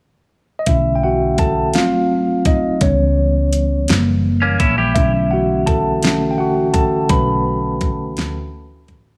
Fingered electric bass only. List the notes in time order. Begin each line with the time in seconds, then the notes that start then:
0.68 B1
1.75 G#1
2.82 C#2
3.89 F#1
4.61 A#1
4.96 B1
7.10 B1
8.18 D2
8.89 A1